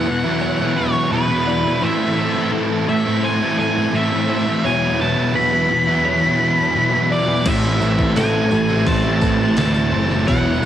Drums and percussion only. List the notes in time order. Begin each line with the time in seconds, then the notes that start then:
7.46 kick, crash
7.81 tambourine
7.99 kick
8.16 snare, open hi-hat, tambourine
8.51 tambourine
8.69 snare, tambourine
8.87 kick, open hi-hat
9.21 kick, tambourine
9.56 snare, open hi-hat, tambourine
9.74 tambourine
10.11 snare, tambourine
10.28 kick, open hi-hat